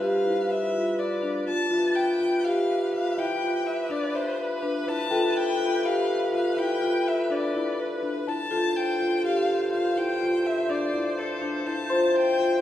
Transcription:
Already playing: F3 G3 B4
0.01 G4 F5
0.25 E4
0.51 E5
0.73 F4
0.99 D5
1.22 D4
1.47 F4 A5
1.71 F3 A3 F4 G4 B4
1.95 G5
2.20 F4
2.44 G4 F5
2.93 F4 F5
3.18 E4 E5 G5
3.41 F4
3.67 E5
3.90 D4 D5
4.14 C5 E5
4.40 B4
4.62 D4
4.87 E4 A5
5.11 F4 A4 G5
5.37 G5
5.60 F4
5.84 G4 F5
6.32 F4 F5
6.57 E4 G5
6.81 F4
7.08 E5
7.30 D4 D5
7.54 E4
7.80 B4
8.03 D4
8.27 E4 A5
8.51 G2 F3 D4 F4 A4 C5
8.76 G5
8.99 F4
9.23 G4 F5
9.72 F4 F5
9.96 E4 G5
10.21 F4
10.46 E5
10.69 D4 D5
10.94 E4
11.03 E5
11.19 A4
11.41 D4
11.65 E4 A5
11.90 F4 C5 C6
12.16 G5
12.39 F4

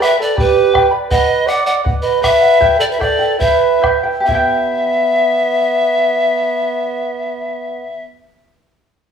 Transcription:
0.00 B4 D5 E5 G5 B5, bombo rim
0.18 A4 B4 D5 B5
0.22 D5
0.36 G4 B4 D5 G5 B5, bombo low
0.73 B4 D5 G5 B5, bombo rim, bombo low
0.91 B4 D5 B5
1.10 B4 D#5 F#5, bombo low
1.46 B4 D5 D#5 F#5, bombo rim
1.66 D5 D#5 F#5
1.84 B4 D#5 F#5, bombo low
2.02 B4 D#5
2.21 B4 D#5 E5 F#5, bombo rim, bombo low
2.41 D#5 F#5
2.60 E4 G4 B4 E5 G5, bombo low
2.79 A4 D5
2.91 B4 E5
2.99 E4 A4 B4 D5 E5 G5, bombo rim, bombo low
3.19 E4 B4 G5
3.39 E4 B4 E5 G5, bombo low
3.81 E4 B4 E5 G5, bombo rim, bombo low
4.03 E4 B4 G5
4.20 G4
4.25 B3 E4 E5, bombo low
4.32 B4 G5

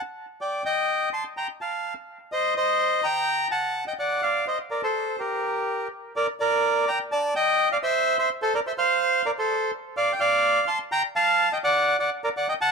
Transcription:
0.41 D5 G5
0.65 D#5 G5
1.13 A5 C6
1.37 G5 A#5
1.61 F5 A5
2.32 C5 D#5
2.57 C5 D#5
3.03 G5 A#5
3.51 F#5 A5
3.88 D#5 G5
3.99 D5 F#5
4.22 D5 F5
4.48 C5 D#5
4.70 A#4 D5
4.83 A4 C5
5.19 G4 A#4
6.16 A#4 D5
6.40 A#4 D5
6.88 G5 A#5
7.12 D5 A5
7.36 D#5 G5
7.72 D5 F5
7.83 C5 E5
8.19 C5 E5
8.42 A4 C5
8.55 A#4 D5
8.67 C5 E5
8.78 C5 F5
9.26 A#4 D5
9.39 A4 C5
9.97 D5 F5
10.13 G5
10.20 D5 F5
10.67 A5 C6
10.92 G5 A#5
11.16 F5 A5
11.53 D#5 G5
11.64 D5 F#5
11.99 D5 F#5
12.24 A#4 D5
12.37 D5 F#5
12.49 D#5 G5
12.61 F#5 A5

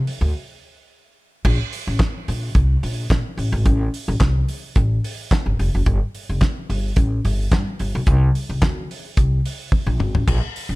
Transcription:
0.07 open hi-hat
0.21 D2
1.45 A#1, kick, crash
1.73 open hi-hat
1.87 A1
1.99 kick, snare, clap, closed hi-hat
2.28 A#1, open hi-hat
2.55 C2, kick, closed hi-hat
2.83 A#1, open hi-hat
3.10 A#2, kick, snare, clap, closed hi-hat
3.37 A1, open hi-hat
3.52 G#1
3.66 A1, kick, closed hi-hat
3.94 open hi-hat
4.08 A1
4.20 C2, kick, snare, clap, closed hi-hat
4.48 open hi-hat
4.76 A1, kick, closed hi-hat
5.04 open hi-hat
5.31 kick, snare, clap, closed hi-hat
5.46 G1
5.59 F1, open hi-hat
5.75 F#1
5.86 G1, kick, closed hi-hat
6.15 open hi-hat
6.29 F1
6.41 kick, snare, clap, closed hi-hat
6.70 G1, open hi-hat
6.96 A1, kick, closed hi-hat
7.25 G1, open hi-hat
7.52 G2, kick, snare, clap, closed hi-hat
7.79 G1, open hi-hat
7.95 B1
8.07 C2, kick, closed hi-hat
8.35 open hi-hat
8.49 C2
8.62 D2, kick, snare, clap, closed hi-hat
8.91 open hi-hat
9.17 C2, kick, closed hi-hat
9.45 open hi-hat
9.72 kick, high tom
9.86 A#1, mid tom
9.99 G#1, mid tom
10.15 A1, floor tom
10.27 A#1, kick, crash
10.56 open hi-hat
10.69 A1

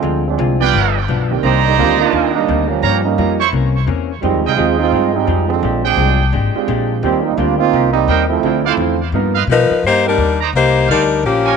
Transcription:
Already playing: D3 F3 G#3 C4
0.02 D2 D3 G#3 C4 F4
0.28 F3 G#3 C4 D4
0.38 C2 D3 G#3 C4 F4
0.60 F3 G3 B3 D4 F4 G4 B4 D5 G5
0.73 G1 G2 F3 B3 D4
1.08 B1 G2 F3 B3 D4
1.31 D#3 A#3 C4 D4 G4
1.43 C2 C3 D#3 G3 A#3 C4 D4 D#4 C5 D5 A#5
1.65 D3 G3 A#3 D#4
1.77 D2 C3 D#3 G3 A#3 C4 D4 F4 G4
1.99 A#3 D4 D#4 F4
2.12 D#2 C3 D#3 A#3 D4
2.34 G3 A#3 D4 D#4
2.48 D2 C3 D#3 A#3 D4
2.69 F3 G3 A#3 C#4
2.83 G2 F3 A#3 C#4 G4 C#5 F5 A#5
3.04 G3 A#3 C#4 D#4
3.18 F2 G2 F3 G3 A#3 C#4 F4 G4
3.40 E4 C5 C#5 C#6
3.52 C2 C3 E3 A#3 C#4
3.87 E2 C3 E3 A#3 C#4
4.22 F2 D#3 F3 G3 G#3 C4 D#4 F4 G4
4.34 D#2
4.44 C2 G3 G#3 C4 D#4 F4 G#4 D#5 G5
4.56 D#2 F3 G#3 C4 D#4 F4 G4 G#4
4.79 G#3 C4 D#4 F4
4.92 G2 F3 G#3 D#4 G4
5.14 G3 G#3 C4 D#4 F4 G4
5.27 F2 F3 G#3 D#4 G4
5.49 D3 F3 G#3 C4
5.63 A#1 A#2 G#3 D4 G4
5.84 F3 G#3 C4 D4 G#4 C5 G5
5.97 C2 A#2 G#3 D4 G4
6.33 G#1 A#2 G#3 D4 G4
6.55 G#3 C4 D4 F4 G4, muted upright bass stroke
6.68 A#1 A#2 G#3 D4 G4
7.03 D#2 D#3 G3 A#3 C4 D#4 F4 G4
7.24 G3 A#3 C4 D#4
7.36 D2 D#3 G3 A#3 C4 D4 F4
7.40 G4
7.58 A#3 C4 D#4 F4
7.73 C2 D#3 A#3 C4 G4
7.92 G3 A#3 C4 D#4
8.08 D#2 D#3 A#3 C4 D#4 G4 A#4 C5 G5
8.28 F3 A3 C4 E4
8.43 D2 D3 F3 A3 C4 D4 E4 F4
8.64 A3 C4 E4 F4 C5 D5 F5
8.77 E2 D3 F3 C4
8.81 E4
9.12 G2 F3 A#3 B3 D#4 F4 A#4
9.35 F4 B4 D#5 F5
9.47 G2 B2 F3 B3 D#4
9.51 F3 D#4 A#4 B4
9.70 muted upright bass stroke
9.83 G2 D#4 C5
9.87 A#3 G4
10.06 G3 A#3 C4 D4 D#4 G4 A#4
10.17 D#2
10.41 D#4 C5 D5 A#5
10.53 C2 A#3 G4 C5
10.57 D#4
10.88 D2 G3 D4 D#4 A#4 C5 D5 F5
11.23 A#1 F3 A#3 C#4 G4
11.46 F4 A#4 C#5 G#5

